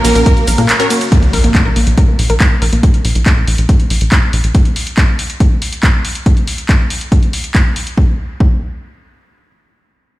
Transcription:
Already playing: C#3 F#3 A#3 A#4
0.04 A#1 A#3 C#4 F#4 A#4, open hi-hat, ride, shaker
0.15 A#1 A#4, closed hi-hat, shaker
0.26 A#3, kick, closed hi-hat, shaker
0.37 closed hi-hat, shaker
0.48 A#1 A#4, open hi-hat, ride, shaker
0.58 A#2 A#3, cross-stick, closed hi-hat, shaker
0.69 clap, closed hi-hat, shaker
0.80 C#4 F#4 A#4 C#5, closed hi-hat, shaker
0.90 A#3, open hi-hat, ride, shaker
1.01 closed hi-hat, shaker
1.12 A#3, kick, closed hi-hat, impact
1.23 closed hi-hat
1.33 A#1 A#4, open hi-hat
1.44 A#1 A#3, closed hi-hat
1.55 kick, clap, closed hi-hat
1.65 A#1 A#4
1.76 A#1 A#3, open hi-hat
1.87 A#1, closed hi-hat
1.97 A#4, kick, closed hi-hat
2.08 A#3
2.19 A#1, open hi-hat
2.30 A#1 A#4, closed hi-hat
2.40 A#3, kick, clap, closed hi-hat
2.62 A#1 A#4, open hi-hat
2.72 A#1 A#3, closed hi-hat
2.83 kick, closed hi-hat
2.94 closed hi-hat
3.05 A#1, open hi-hat
3.15 A#1, closed hi-hat
3.26 kick, clap, closed hi-hat
3.37 A#1
3.48 A#1, open hi-hat
3.58 A#1, closed hi-hat
3.69 kick, closed hi-hat
3.80 closed hi-hat
3.90 A#1, open hi-hat
4.01 A#1, closed hi-hat
4.12 kick, clap, closed hi-hat
4.33 A#1, open hi-hat
4.44 A#1, closed hi-hat
4.55 kick, closed hi-hat
4.65 closed hi-hat
4.76 open hi-hat
4.87 closed hi-hat
4.97 kick, clap, closed hi-hat
5.19 open hi-hat
5.30 closed hi-hat
5.40 kick, closed hi-hat
5.62 open hi-hat
5.73 closed hi-hat
5.83 kick, clap, closed hi-hat
6.05 open hi-hat
6.15 closed hi-hat
6.26 kick, closed hi-hat
6.37 closed hi-hat
6.47 open hi-hat
6.58 closed hi-hat
6.69 kick, clap, closed hi-hat
6.90 open hi-hat
7.01 closed hi-hat
7.12 kick, closed hi-hat
7.23 closed hi-hat
7.33 open hi-hat
7.44 closed hi-hat
7.55 kick, clap, closed hi-hat
7.76 open hi-hat
7.87 closed hi-hat
7.98 kick
8.40 kick

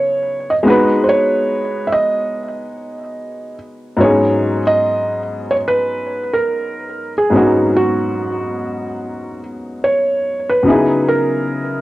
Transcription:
Already playing: C#3 F#3 B3 D#4 E4 G#4 C#5
0.50 D#5
0.63 G#3 B3 D#4
0.68 F#4 B4
1.04 C5
1.09 C#5
1.87 E5
1.92 D#5
3.97 G#2 F#3 B3
4.01 C#4 D#4 G#4 C#5
4.67 D#5
5.51 C#5
5.68 B4
6.33 A#4
7.18 G#4
7.30 G#2 F#3 B3 C#4
7.35 D#4 F#4
7.77 F#4
9.84 C#5
10.49 B4
10.63 C#3 F#3 B3
10.67 D#4 E4 G#4
11.09 A#4

